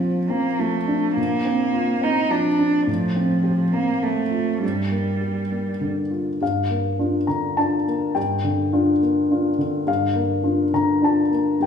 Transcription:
0.00 1.13 A#2 soft
0.00 0.31 F3 soft
0.00 0.19 C4 soft
0.00 0.48 F4 soft
0.29 0.61 A#3 medium
0.29 0.77 C4 soft
0.59 1.06 F3 soft
0.59 1.14 A3 medium
0.87 1.34 D4 soft
1.15 2.83 A#2 soft
1.15 2.05 A#3 medium
1.45 1.91 C4 soft
1.73 2.19 F4 soft
2.01 2.48 C4 soft
2.01 2.32 D#4 medium
2.30 2.76 F3 soft
2.30 2.87 D4 medium
2.59 2.88 D4 soft
2.87 4.58 A2 soft
2.87 3.75 F3 medium
3.16 3.62 C4 soft
3.44 3.91 G4 soft
3.73 4.04 A#3 medium
3.73 4.20 C4 soft
4.03 4.50 A3 soft
4.03 4.62 A3 soft
4.31 4.62 F4 soft
4.62 6.37 G2 soft
4.62 5.80 G3 soft
4.91 5.39 A#3 soft
5.21 5.69 G4 soft
5.51 5.99 A#3 soft
5.81 6.29 D3 soft
6.11 6.41 F4 soft
6.41 8.12 G2 soft
6.41 7.26 F5 medium
6.70 7.17 A#3 soft
6.99 7.26 D4 soft
6.99 7.26 F4 soft
7.27 7.75 D3 soft
7.27 7.55 A#5 soft
7.57 7.84 D4 soft
7.57 7.84 F4 soft
7.57 8.12 A5 medium
7.87 8.33 A#3 soft
8.15 9.83 G2 soft
8.15 9.55 G5 medium
8.44 8.90 D3 soft
8.73 8.99 D4 soft
8.73 8.99 F4 soft
9.02 9.48 A#3 soft
9.31 9.57 D4 soft
9.31 9.57 F4 soft
9.58 10.04 D3 soft
9.87 11.56 G2 soft
9.87 10.70 F5 medium
10.16 10.62 A#3 soft
10.43 10.70 D4 soft
10.43 10.70 F4 soft
10.73 11.20 D3 soft
10.73 11.01 A#5 medium
11.02 11.28 D4 soft
11.02 11.29 F4 soft
11.02 11.58 A5 medium
11.32 11.67 A#3 soft
11.60 11.67 G2 soft
11.60 11.67 G5 medium

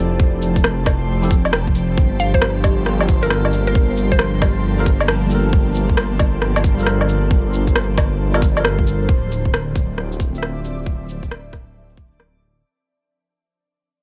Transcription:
0.00 1.96 F1 medium
0.00 1.17 F3 medium
0.00 12.64 F3 medium
0.00 2.92 C4 medium
0.00 1.19 E4 medium
0.00 1.20 G4 medium
0.00 10.41 G4 loud
0.00 1.21 A4 loud
0.00 9.09 C5 medium
0.00 3.72 D5 medium
0.00 12.64 A5 medium
0.20 kick loud
0.42 cabasa medium
0.42 shaker medium
0.56 kick medium
0.56 shaker soft
0.64 cross-stick loud
0.86 kick loud
0.86 cross-stick medium
0.86 cabasa medium
0.86 low woodblock soft
0.86 shaker medium
1.21 1.32 F3 medium
1.21 1.33 E4 medium
1.21 1.34 G4 medium
1.21 1.34 A4 loud
1.21 shaker soft
1.31 kick loud
1.31 cabasa medium
1.31 shaker medium
1.45 low woodblock soft
1.45 shaker soft
1.53 cross-stick loud
1.67 kick medium
1.75 cabasa medium
1.75 shaker medium
1.98 9.07 G1 medium
1.98 kick loud
2.03 9.09 A#3 medium
2.20 2.31 F5 medium
2.20 cabasa medium
2.20 shaker medium
2.34 2.57 C5 loud
2.34 kick medium
2.42 cross-stick loud
2.63 12.64 D4 medium
2.63 kick loud
2.63 cabasa medium
2.63 low woodblock medium
2.63 shaker medium
2.86 cross-stick medium
3.01 low woodblock medium
3.01 shaker soft
3.08 kick loud
3.08 cabasa medium
3.08 shaker medium
3.19 4.73 G3 medium
3.19 4.74 F4 medium
3.19 3.46 A#4 medium
3.23 4.76 A4 medium
3.23 4.77 A#4 loud
3.23 shaker soft
3.30 cross-stick loud
3.45 low woodblock soft
3.53 cabasa medium
3.53 shaker medium
3.67 3.90 A#4 medium
3.75 kick loud
3.97 cabasa medium
3.97 shaker medium
4.12 4.73 C5 loud
4.12 kick medium
4.12 shaker soft
4.19 cross-stick loud
4.42 kick loud
4.42 cross-stick medium
4.42 cabasa medium
4.42 low woodblock medium
4.42 shaker medium
4.76 4.88 G3 medium
4.76 4.89 F4 medium
4.76 4.89 A4 medium
4.76 4.90 A#4 loud
4.76 shaker soft
4.86 kick loud
4.86 cabasa medium
4.86 shaker medium
5.00 low woodblock medium
5.00 shaker soft
5.08 cross-stick loud
5.27 6.73 G3 medium
5.27 6.74 F4 medium
5.27 cabasa medium
5.27 shaker medium
5.32 6.76 A4 medium
5.32 6.77 A#4 loud
5.53 kick loud
5.75 cabasa medium
5.75 shaker medium
5.89 kick medium
5.97 cross-stick loud
6.19 kick loud
6.19 cabasa medium
6.19 low woodblock medium
6.19 shaker medium
6.42 cross-stick medium
6.56 low woodblock medium
6.56 shaker soft
6.64 kick loud
6.64 cabasa medium
6.64 shaker medium
6.74 8.29 G3 loud
6.74 8.30 F4 medium
6.79 8.31 A4 medium
6.79 8.33 A#4 loud
6.79 shaker soft
6.87 cross-stick loud
7.01 low woodblock medium
7.09 cabasa medium
7.09 shaker medium
7.31 kick loud
7.53 cabasa medium
7.53 shaker medium
7.67 kick medium
7.67 shaker soft
7.76 cross-stick loud
7.98 kick loud
7.98 cross-stick medium
7.98 cabasa medium
7.98 low woodblock medium
7.98 shaker medium
8.32 8.44 G3 medium
8.32 8.44 F4 medium
8.32 8.45 A4 medium
8.32 low woodblock medium
8.32 shaker soft
8.36 8.46 A#4 loud
8.42 kick loud
8.42 cabasa medium
8.42 shaker medium
8.52 9.06 G3 medium
8.52 9.07 F4 medium
8.57 9.08 A4 medium
8.57 9.10 A#4 medium
8.57 low woodblock medium
8.57 shaker soft
8.65 cross-stick loud
8.79 kick medium
8.87 cabasa medium
8.87 shaker medium
9.08 12.63 D1 medium
9.08 12.65 D5 medium
9.08 kick loud
9.27 12.64 C4 medium
9.32 shaker medium
9.37 12.64 E5 medium
9.45 kick medium
9.54 cross-stick loud
9.76 kick loud
9.76 shaker medium
9.98 cross-stick medium
10.12 shaker soft
10.20 kick loud
10.20 shaker medium
10.30 11.07 D3 medium
10.30 11.08 C4 medium
10.35 11.09 F4 medium
10.35 11.11 E5 loud
10.35 shaker soft
10.43 cross-stick medium
10.65 shaker medium
10.86 kick loud
11.09 shaker medium
11.23 kick medium
11.23 shaker soft
11.31 cross-stick loud
11.53 kick loud
11.53 cross-stick medium
11.53 shaker medium
11.90 shaker soft
11.97 kick loud
11.97 shaker medium
12.12 shaker soft
12.20 cross-stick loud
12.42 shaker soft

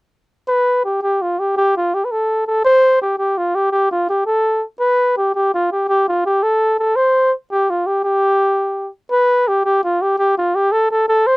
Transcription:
0.48 0.82 B4 medium
0.85 1.01 G4 medium
1.02 1.23 G4 medium
1.22 1.41 F4 medium
1.39 1.56 G4 medium
1.57 1.75 G4 medium
1.77 1.96 F4 medium
1.94 2.06 G4 medium
2.05 2.13 B4 medium
2.12 2.47 A4 medium
2.47 2.64 A4 medium
2.65 2.99 C5 loud
3.02 3.18 G4 medium
3.18 3.39 G4 medium
3.38 3.57 F4 medium
3.55 3.71 G4 medium
3.72 3.90 G4 medium
3.92 4.08 F4 medium
4.09 4.25 G4 medium
4.26 4.65 A4 medium
4.80 5.14 B4 medium
5.17 5.33 G4 medium
5.35 5.52 G4 medium
5.54 5.70 F4 medium
5.72 5.88 G4 medium
5.89 6.06 G4 medium
6.08 6.24 F4 medium
6.26 6.44 G4 medium
6.43 6.79 A4 medium
6.79 6.98 A4 medium
6.96 7.32 C5 loud
7.51 7.71 G4 medium
7.70 7.88 F4 medium
7.87 8.04 G4 medium
8.04 8.90 G4 medium
9.12 9.49 B4 loud
9.48 9.65 G4 medium
9.65 9.82 G4 medium
9.84 10.03 F4 medium
10.02 10.18 G4 medium
10.19 10.36 G4 medium
10.38 10.57 F4 medium
10.55 10.74 G4 medium
10.72 10.91 A4 loud
10.91 11.07 A4 medium
11.09 11.28 A4 loud
11.27 11.37 C5 loud

